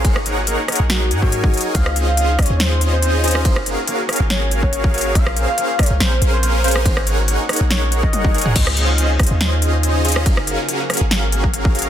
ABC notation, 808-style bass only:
X:1
M:4/4
L:1/16
Q:"Swing 16ths" 1/4=141
K:Db
V:1 name="808-style bass" clef=bass
A,,,4- A,,, z2 B,,,3 A,,4 z2 | D,,6- D,, E,,8- E,, | G,,,3 z4 A,,,8- A,,, | B,,,3 z4 C,, B,,,2 B,,,6 |
A,,,4- A,,, z2 B,,,4- B,,, G,,,4 | D,,6- D,, E,,8- E,, | G,,,3 z4 A,,,8- A,,, |]